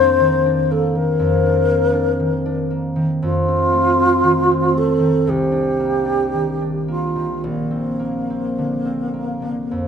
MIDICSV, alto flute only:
0, 0, Header, 1, 2, 480
1, 0, Start_track
1, 0, Tempo, 993377
1, 1068, Tempo, 1022147
1, 1545, Time_signature, 4, 2, 24, 8
1, 2508, Tempo, 1071429
1, 2988, Tempo, 1115242
1, 4507, End_track
2, 0, Start_track
2, 0, Title_t, "Alto flute"
2, 0, Program_c, 0, 73
2, 0, Note_on_c, 0, 72, 86
2, 346, Note_on_c, 0, 69, 66
2, 353, Note_off_c, 0, 72, 0
2, 468, Note_on_c, 0, 70, 67
2, 475, Note_off_c, 0, 69, 0
2, 1307, Note_off_c, 0, 70, 0
2, 1550, Note_on_c, 0, 65, 84
2, 2273, Note_on_c, 0, 69, 63
2, 2280, Note_off_c, 0, 65, 0
2, 2515, Note_on_c, 0, 67, 76
2, 2522, Note_off_c, 0, 69, 0
2, 3224, Note_off_c, 0, 67, 0
2, 3227, Note_on_c, 0, 65, 57
2, 3463, Note_off_c, 0, 65, 0
2, 3469, Note_on_c, 0, 58, 60
2, 4507, Note_off_c, 0, 58, 0
2, 4507, End_track
0, 0, End_of_file